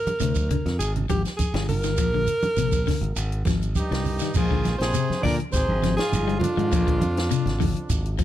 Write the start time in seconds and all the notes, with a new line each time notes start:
Already playing: A#4
0.06 muted fingered electric bass stroke, closed hi-hat, high conga, shekere
0.20 D2 C3, closed hi-hat, high conga, shekere
0.35 kick, closed hi-hat, high conga, shekere
0.50 D3, kick, closed hi-hat, low conga, shekere
0.66 F2, snare, closed hi-hat
0.79 G#1 G#4, closed hi-hat, high conga, shekere
0.96 closed hi-hat, low conga
1.09 G#1 F3 G4, kick, closed hi-hat, high conga, shekere
1.25 snare, closed hi-hat, shekere
1.37 G#4, muted fingered electric bass stroke, kick, closed hi-hat, high conga, shekere
1.54 G1 G3, snare, closed hi-hat
1.68 A#4, open hi-hat, high conga, low conga, shekere
1.83 D#3, snare, closed hi-hat, shekere
1.97 A#1 F3, kick, closed hi-hat, shekere
2.14 D3
2.27 closed hi-hat, shekere
2.42 closed hi-hat, high conga, shekere
2.57 A#1 C3, closed hi-hat, high conga, shekere
2.72 kick, closed hi-hat, high conga, shekere
2.86 D3, kick, snare, open hi-hat, low conga, shekere
3.01 G#1, closed hi-hat
3.16 G#1, closed hi-hat, high conga, shekere
3.32 closed hi-hat
3.45 G#1 F3, kick, snare, closed hi-hat, high conga, shekere
3.62 closed hi-hat, shekere
3.75 G2 G4, kick, closed hi-hat, high conga, shekere
3.80 D#4
3.91 C2 G3, snare, closed hi-hat
4.05 open hi-hat, high conga, low conga, shekere
4.19 D#3, snare, closed hi-hat, shekere
4.34 A#1 G#2 F3 F4 G#4, kick, crash, low conga, shekere
4.51 D3, kick
4.64 snare, closed hi-hat, high conga, shekere
4.77 A#1 C3 C5, closed hi-hat
4.82 G#4, snare
4.94 C3, closed hi-hat, shekere
5.10 muted fingered electric bass stroke, snare, high conga
5.21 D3 D5, kick, high conga, low conga, shekere
5.25 A#2 A#4, snare, open hi-hat
5.40 closed hi-hat
5.51 G#1 C3 G#4 C5, kick, snare, closed hi-hat, shekere
5.68 G#1, high conga
5.83 F3, snare, closed hi-hat, low conga, shekere
5.96 G#2 F4 G#4, snare, closed hi-hat
6.12 G1, closed hi-hat, high conga, shekere
6.28 G3, closed hi-hat
6.37 F2 F4, high conga, low conga
6.43 D4, closed hi-hat, shekere
6.57 G#2 D#3, closed hi-hat, high conga
6.72 A#1 F3, kick, closed hi-hat, low conga, shekere
6.87 D3, kick, closed hi-hat
7.01 F2, closed hi-hat, high conga, shekere
7.17 snare, closed hi-hat
7.31 C3, closed hi-hat, shekere
7.46 G#1, snare, closed hi-hat
7.60 D3, kick, open hi-hat, high conga, low conga, shekere
7.76 closed hi-hat
7.90 G#1, kick, closed hi-hat, shekere
8.06 closed hi-hat
8.19 F3, kick, closed hi-hat, shekere